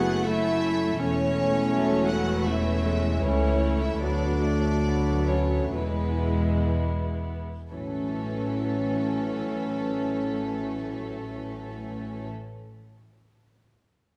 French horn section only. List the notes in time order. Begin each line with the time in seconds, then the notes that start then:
Already playing: A3 E4
1.00 A3 E4
2.46 C#4 E4
3.24 A3 E4
4.01 A3 F#4
5.77 G#3 E4
7.71 F#3 C#4